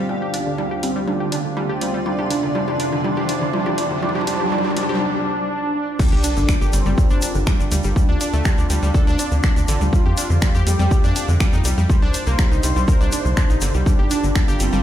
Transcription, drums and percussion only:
0.09 mid tom
0.34 open hi-hat, mid tom
0.58 mid tom
0.83 open hi-hat, mid tom
1.08 mid tom
1.32 open hi-hat, mid tom
1.57 mid tom
1.81 open hi-hat, mid tom
2.06 mid tom
2.19 mid tom
2.31 open hi-hat, mid tom
2.43 mid tom
2.55 mid tom
2.68 mid tom
2.80 open hi-hat, mid tom
2.92 mid tom
3.04 mid tom
3.17 mid tom
3.29 open hi-hat, mid tom
3.42 mid tom
3.53 mid tom
3.66 mid tom
3.78 open hi-hat, mid tom
3.91 mid tom
4.03 mid tom
4.09 mid tom
4.15 mid tom
4.21 mid tom
4.27 open hi-hat, mid tom
4.34 mid tom
4.40 mid tom
4.46 mid tom
4.52 mid tom
4.58 mid tom
4.65 mid tom
4.71 mid tom
4.77 open hi-hat, mid tom
4.83 mid tom
4.89 mid tom
4.95 mid tom
5.99 kick, crash, shaker
6.24 open hi-hat, shaker
6.37 shaker
6.49 finger snap, kick, shaker
6.62 shaker
6.73 open hi-hat, shaker
6.86 shaker
6.98 kick, shaker
7.10 shaker
7.22 open hi-hat, shaker
7.35 shaker
7.47 finger snap, kick, shaker
7.60 shaker
7.72 open hi-hat, shaker
7.83 shaker
7.96 kick, shaker
8.21 open hi-hat, shaker
8.33 shaker
8.45 finger snap, kick, shaker
8.58 shaker
8.70 open hi-hat, shaker
8.83 shaker
8.95 kick, shaker
9.08 shaker
9.19 open hi-hat, shaker
9.31 shaker
9.44 finger snap, kick, shaker
9.57 shaker
9.68 open hi-hat, shaker
9.81 shaker
9.93 kick, shaker
10.17 open hi-hat, shaker
10.31 shaker
10.42 finger snap, kick, shaker
10.55 shaker
10.67 open hi-hat, shaker
10.79 shaker
10.91 kick, shaker
11.04 shaker
11.16 open hi-hat, shaker
11.28 shaker
11.40 finger snap, kick, shaker
11.53 shaker
11.65 open hi-hat, shaker
11.78 shaker
11.90 kick, shaker
12.14 open hi-hat, shaker
12.26 shaker
12.39 finger snap, kick, shaker
12.52 shaker
12.63 open hi-hat, shaker
12.76 shaker
12.88 kick, shaker
13.01 shaker
13.12 open hi-hat, shaker
13.25 shaker
13.37 finger snap, kick, shaker
13.50 shaker
13.61 open hi-hat, shaker
13.74 shaker
13.86 kick, shaker
14.11 open hi-hat, shaker
14.24 shaker
14.35 finger snap, kick, shaker
14.48 shaker
14.60 open hi-hat, shaker
14.73 shaker

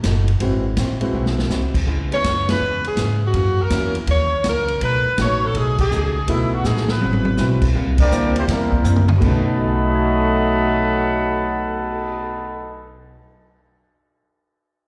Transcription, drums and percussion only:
0.03 kick, snare, hi-hat pedal, ride
0.28 ride
0.40 kick, ride
0.77 kick, snare, hi-hat pedal, ride
1.01 ride
1.26 snare
1.39 snare
1.50 snare, hi-hat pedal
1.74 kick, crash
1.87 kick
2.12 ride
2.24 kick, snare, hi-hat pedal, ride
2.49 snare, ride
2.84 ride
2.97 kick, snare, hi-hat pedal, ride
3.34 kick, ride
3.70 kick, snare, hi-hat pedal, ride
3.95 ride
4.07 kick, ride
4.44 kick, snare, hi-hat pedal, ride
4.68 ride
4.81 kick, ride
5.18 kick, snare, hi-hat pedal, ride
5.54 kick, ride
5.78 kick, crash
5.91 hi-hat pedal
6.28 kick, ride
6.64 snare, hi-hat pedal
6.76 snare
6.88 snare
7.01 high tom
7.13 high tom
7.25 high tom
7.37 snare, hi-hat pedal
7.62 kick, crash
7.74 kick
7.98 kick, crash
8.12 hi-hat pedal
8.36 ride
8.48 kick, snare, ride
8.72 kick
8.84 hi-hat pedal, mid tom
8.96 mid tom
9.08 mid tom
9.21 kick, crash
9.46 cymbal swell

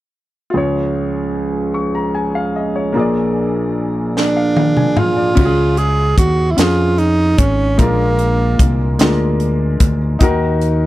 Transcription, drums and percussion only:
4.17 snare
4.56 high tom
4.77 mid tom
4.97 mid tom
5.37 kick, crash
5.77 closed hi-hat
6.18 kick, closed hi-hat
6.58 snare, closed hi-hat
6.98 closed hi-hat
7.38 kick, closed hi-hat
7.79 kick, closed hi-hat
8.19 closed hi-hat
8.59 kick, closed hi-hat
8.99 snare, closed hi-hat
9.40 closed hi-hat
9.80 kick, closed hi-hat
10.21 kick, closed hi-hat
10.61 closed hi-hat

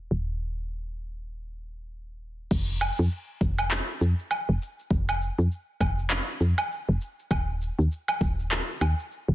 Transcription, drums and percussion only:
2.51 kick, crash, shaker
2.81 low woodblock, shaker
2.99 shaker
3.12 shaker
3.41 kick, shaker
3.58 low woodblock, shaker
3.71 clap, shaker
4.01 shaker
4.19 shaker
4.31 low woodblock, shaker
4.62 shaker
4.79 shaker
4.91 kick, shaker
5.09 low woodblock
5.22 shaker
5.39 shaker
5.52 shaker
5.81 kick, low woodblock, shaker
5.99 shaker
6.10 clap, shaker
6.41 shaker
6.58 low woodblock, shaker
6.71 shaker
7.01 shaker
7.19 shaker
7.31 kick, low woodblock, shaker
7.62 shaker
7.80 shaker
7.92 shaker
8.08 low woodblock
8.21 kick, shaker
8.39 shaker
8.51 clap, shaker
8.81 low woodblock, shaker
8.99 shaker
9.12 shaker

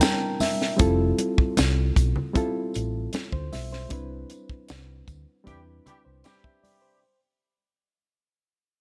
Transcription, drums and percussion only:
0.01 snare, closed hi-hat, tambourine, high conga
0.40 snare, open hi-hat, tambourine, high conga
0.62 snare
0.79 kick, closed hi-hat, tambourine, muted conga
1.18 closed hi-hat, muted conga
1.38 kick
1.57 snare, closed hi-hat, tambourine, high conga
1.96 kick, closed hi-hat, tambourine
2.16 low conga
2.35 kick, closed hi-hat, tambourine, muted conga
2.74 closed hi-hat, tambourine
3.13 snare, closed hi-hat, tambourine, high conga
3.32 kick
3.52 snare, open hi-hat, tambourine, high conga
3.73 snare
3.90 kick, closed hi-hat, tambourine, muted conga
4.30 closed hi-hat, tambourine, muted conga
4.50 kick
4.69 snare, closed hi-hat, tambourine, high conga
5.08 kick, closed hi-hat, tambourine
5.47 kick, closed hi-hat, tambourine, muted conga, low conga
5.86 closed hi-hat, tambourine, muted conga, low conga
6.24 snare, closed hi-hat, tambourine, high conga
6.44 kick
6.64 open hi-hat, tambourine, high conga

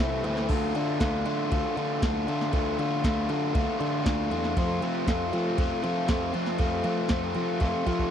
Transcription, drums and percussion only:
0.24 snare, ride
0.37 snare
0.49 kick, crash
0.75 ride
1.00 kick, snare, ride
1.26 ride
1.52 kick, ride
1.77 ride
2.02 kick, snare, ride
2.28 snare, ride
2.41 snare
2.53 kick, ride
2.79 ride
3.04 kick, snare, ride
3.29 ride
3.55 kick, ride
3.81 ride
4.06 kick, snare, ride
4.31 ride
4.44 snare
4.56 kick, ride
4.82 ride
5.07 kick, snare, ride
5.33 ride
5.58 kick, ride
5.84 ride
6.08 kick, snare, ride
6.34 ride
6.47 snare
6.58 kick, ride
6.84 ride
7.09 kick, snare, ride
7.35 ride
7.60 kick, ride
7.86 kick, ride
7.99 kick

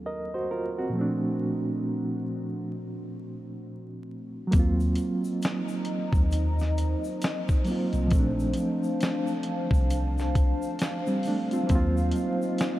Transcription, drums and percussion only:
4.52 kick, closed hi-hat, shaker
4.80 shaker
4.95 closed hi-hat, shaker
5.24 shaker
5.42 snare, closed hi-hat, shaker
5.68 shaker
5.85 closed hi-hat
6.13 kick, shaker
6.31 closed hi-hat, shaker
6.59 snare, shaker
6.78 closed hi-hat, shaker
7.04 shaker
7.22 snare, closed hi-hat, shaker
7.49 kick, shaker
7.65 open hi-hat, shaker
7.93 closed hi-hat, shaker
8.11 kick, closed hi-hat, shaker
8.40 shaker
8.53 closed hi-hat, shaker
8.83 shaker
9.01 snare, closed hi-hat, shaker
9.27 shaker
9.43 closed hi-hat
9.71 kick, shaker
9.90 closed hi-hat, shaker
10.18 snare, shaker
10.35 kick, closed hi-hat, shaker
10.62 shaker
10.79 snare, closed hi-hat, shaker
11.07 shaker
11.23 open hi-hat, shaker
11.51 closed hi-hat, shaker
11.69 kick, closed hi-hat, shaker
11.97 shaker
12.11 closed hi-hat, shaker
12.42 shaker
12.58 snare, closed hi-hat, shaker

